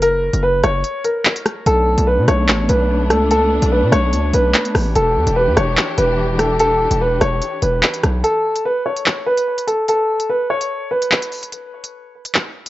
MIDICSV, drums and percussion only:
0, 0, Header, 1, 2, 480
1, 0, Start_track
1, 0, Tempo, 410959
1, 23, Time_signature, 4, 2, 24, 8
1, 14825, End_track
2, 0, Start_track
2, 0, Title_t, "Drums"
2, 24, Note_on_c, 9, 42, 78
2, 140, Note_off_c, 9, 42, 0
2, 391, Note_on_c, 9, 42, 77
2, 508, Note_off_c, 9, 42, 0
2, 743, Note_on_c, 9, 42, 87
2, 744, Note_on_c, 9, 37, 96
2, 860, Note_off_c, 9, 42, 0
2, 861, Note_off_c, 9, 37, 0
2, 982, Note_on_c, 9, 42, 71
2, 1099, Note_off_c, 9, 42, 0
2, 1222, Note_on_c, 9, 42, 85
2, 1338, Note_off_c, 9, 42, 0
2, 1464, Note_on_c, 9, 39, 112
2, 1464, Note_on_c, 9, 42, 79
2, 1581, Note_off_c, 9, 39, 0
2, 1581, Note_off_c, 9, 42, 0
2, 1590, Note_on_c, 9, 42, 91
2, 1703, Note_off_c, 9, 42, 0
2, 1703, Note_on_c, 9, 37, 95
2, 1703, Note_on_c, 9, 42, 73
2, 1820, Note_off_c, 9, 37, 0
2, 1820, Note_off_c, 9, 42, 0
2, 1943, Note_on_c, 9, 42, 81
2, 2060, Note_off_c, 9, 42, 0
2, 2310, Note_on_c, 9, 42, 76
2, 2427, Note_off_c, 9, 42, 0
2, 2663, Note_on_c, 9, 42, 85
2, 2664, Note_on_c, 9, 37, 97
2, 2780, Note_off_c, 9, 42, 0
2, 2781, Note_off_c, 9, 37, 0
2, 2902, Note_on_c, 9, 39, 127
2, 2902, Note_on_c, 9, 42, 72
2, 3018, Note_off_c, 9, 42, 0
2, 3019, Note_off_c, 9, 39, 0
2, 3141, Note_on_c, 9, 42, 84
2, 3258, Note_off_c, 9, 42, 0
2, 3623, Note_on_c, 9, 37, 94
2, 3623, Note_on_c, 9, 42, 74
2, 3740, Note_off_c, 9, 37, 0
2, 3740, Note_off_c, 9, 42, 0
2, 3863, Note_on_c, 9, 42, 78
2, 3979, Note_off_c, 9, 42, 0
2, 4230, Note_on_c, 9, 42, 76
2, 4347, Note_off_c, 9, 42, 0
2, 4584, Note_on_c, 9, 37, 94
2, 4584, Note_on_c, 9, 42, 86
2, 4700, Note_off_c, 9, 42, 0
2, 4701, Note_off_c, 9, 37, 0
2, 4822, Note_on_c, 9, 42, 70
2, 4939, Note_off_c, 9, 42, 0
2, 5062, Note_on_c, 9, 42, 84
2, 5179, Note_off_c, 9, 42, 0
2, 5304, Note_on_c, 9, 39, 111
2, 5304, Note_on_c, 9, 42, 78
2, 5421, Note_off_c, 9, 39, 0
2, 5421, Note_off_c, 9, 42, 0
2, 5430, Note_on_c, 9, 42, 90
2, 5544, Note_on_c, 9, 37, 97
2, 5544, Note_on_c, 9, 46, 54
2, 5547, Note_off_c, 9, 42, 0
2, 5661, Note_off_c, 9, 37, 0
2, 5661, Note_off_c, 9, 46, 0
2, 5784, Note_on_c, 9, 42, 82
2, 5901, Note_off_c, 9, 42, 0
2, 6151, Note_on_c, 9, 42, 76
2, 6268, Note_off_c, 9, 42, 0
2, 6503, Note_on_c, 9, 42, 84
2, 6504, Note_on_c, 9, 37, 99
2, 6620, Note_off_c, 9, 42, 0
2, 6621, Note_off_c, 9, 37, 0
2, 6742, Note_on_c, 9, 42, 73
2, 6743, Note_on_c, 9, 39, 127
2, 6859, Note_off_c, 9, 39, 0
2, 6859, Note_off_c, 9, 42, 0
2, 6982, Note_on_c, 9, 42, 83
2, 7099, Note_off_c, 9, 42, 0
2, 7464, Note_on_c, 9, 37, 92
2, 7464, Note_on_c, 9, 42, 77
2, 7580, Note_off_c, 9, 42, 0
2, 7581, Note_off_c, 9, 37, 0
2, 7703, Note_on_c, 9, 42, 80
2, 7820, Note_off_c, 9, 42, 0
2, 8070, Note_on_c, 9, 42, 77
2, 8187, Note_off_c, 9, 42, 0
2, 8423, Note_on_c, 9, 37, 95
2, 8423, Note_on_c, 9, 42, 86
2, 8539, Note_off_c, 9, 42, 0
2, 8540, Note_off_c, 9, 37, 0
2, 8662, Note_on_c, 9, 42, 69
2, 8779, Note_off_c, 9, 42, 0
2, 8901, Note_on_c, 9, 42, 83
2, 9018, Note_off_c, 9, 42, 0
2, 9142, Note_on_c, 9, 39, 111
2, 9142, Note_on_c, 9, 42, 80
2, 9259, Note_off_c, 9, 39, 0
2, 9259, Note_off_c, 9, 42, 0
2, 9269, Note_on_c, 9, 42, 91
2, 9383, Note_off_c, 9, 42, 0
2, 9383, Note_on_c, 9, 42, 74
2, 9384, Note_on_c, 9, 37, 98
2, 9500, Note_off_c, 9, 37, 0
2, 9500, Note_off_c, 9, 42, 0
2, 9623, Note_on_c, 9, 42, 78
2, 9740, Note_off_c, 9, 42, 0
2, 9990, Note_on_c, 9, 42, 74
2, 10107, Note_off_c, 9, 42, 0
2, 10471, Note_on_c, 9, 42, 79
2, 10583, Note_on_c, 9, 39, 125
2, 10588, Note_off_c, 9, 42, 0
2, 10699, Note_off_c, 9, 39, 0
2, 10950, Note_on_c, 9, 42, 79
2, 11067, Note_off_c, 9, 42, 0
2, 11190, Note_on_c, 9, 42, 79
2, 11303, Note_off_c, 9, 42, 0
2, 11303, Note_on_c, 9, 42, 72
2, 11420, Note_off_c, 9, 42, 0
2, 11543, Note_on_c, 9, 42, 76
2, 11660, Note_off_c, 9, 42, 0
2, 11910, Note_on_c, 9, 42, 73
2, 12027, Note_off_c, 9, 42, 0
2, 12390, Note_on_c, 9, 42, 78
2, 12507, Note_off_c, 9, 42, 0
2, 12870, Note_on_c, 9, 42, 80
2, 12983, Note_on_c, 9, 39, 110
2, 12987, Note_off_c, 9, 42, 0
2, 13099, Note_off_c, 9, 39, 0
2, 13109, Note_on_c, 9, 42, 88
2, 13222, Note_on_c, 9, 46, 53
2, 13225, Note_off_c, 9, 42, 0
2, 13339, Note_off_c, 9, 46, 0
2, 13351, Note_on_c, 9, 42, 72
2, 13462, Note_off_c, 9, 42, 0
2, 13462, Note_on_c, 9, 42, 76
2, 13579, Note_off_c, 9, 42, 0
2, 13830, Note_on_c, 9, 42, 77
2, 13947, Note_off_c, 9, 42, 0
2, 14310, Note_on_c, 9, 42, 77
2, 14421, Note_on_c, 9, 39, 123
2, 14427, Note_off_c, 9, 42, 0
2, 14538, Note_off_c, 9, 39, 0
2, 14789, Note_on_c, 9, 42, 81
2, 14825, Note_off_c, 9, 42, 0
2, 14825, End_track
0, 0, End_of_file